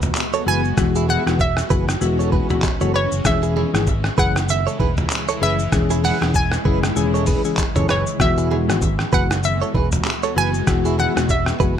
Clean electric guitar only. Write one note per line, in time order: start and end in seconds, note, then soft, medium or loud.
0.34 0.44 A4 medium
0.34 0.44 C#5 medium
0.47 0.61 G#4 medium
0.47 0.61 B4 medium
0.96 1.06 E4 medium
0.96 1.06 G#4 medium
1.08 1.23 E4 medium
1.08 1.22 G#4 medium
1.70 1.85 G#4 medium
1.70 1.84 B4 medium
2.19 2.30 A4 medium
2.19 2.29 C#5 medium
2.32 2.47 G#4 medium
2.32 2.46 B4 medium
2.81 2.92 A4 medium
2.81 2.91 C#5 medium
2.94 3.09 G#4 medium
2.94 3.08 B4 medium
3.43 3.54 E4 medium
3.43 3.53 G#4 medium
3.56 3.70 E4 medium
3.56 3.70 G#4 medium
4.18 4.32 G#4 medium
4.18 4.32 B4 medium
4.67 4.77 A4 medium
4.67 4.77 C#5 medium
4.80 4.94 G#4 medium
4.80 4.94 B4 medium
5.29 5.39 A4 medium
5.29 5.39 C#5 medium
5.42 5.56 G#4 medium
5.42 5.56 B4 medium
5.90 6.01 E4 medium
5.90 6.01 G#4 medium
6.03 6.18 E4 medium
6.03 6.17 G#4 medium
6.65 6.80 G#4 medium
6.65 6.79 B4 medium
7.14 7.25 A4 medium
7.14 7.24 C#5 medium
7.27 7.42 G#4 medium
7.27 7.41 B4 medium
7.76 7.87 A4 medium
7.76 7.86 C#5 medium
7.89 8.03 G#4 medium
7.89 8.03 B4 medium
8.38 8.48 E4 medium
8.38 8.48 G#4 medium
8.51 8.65 E4 medium
8.51 8.65 G#4 medium
9.13 9.27 G#4 medium
9.13 9.27 B4 medium
9.62 9.72 A4 medium
9.62 9.72 C#5 medium
9.75 9.89 G#4 medium
9.75 9.89 B4 medium
10.23 10.34 A4 medium
10.23 10.34 C#5 medium
10.36 10.51 G#4 medium
10.36 10.50 B4 medium
10.85 10.96 E4 medium
10.85 10.95 G#4 medium
10.98 11.13 E4 medium
10.98 11.12 G#4 medium
11.60 11.74 G#4 medium
11.60 11.74 B4 medium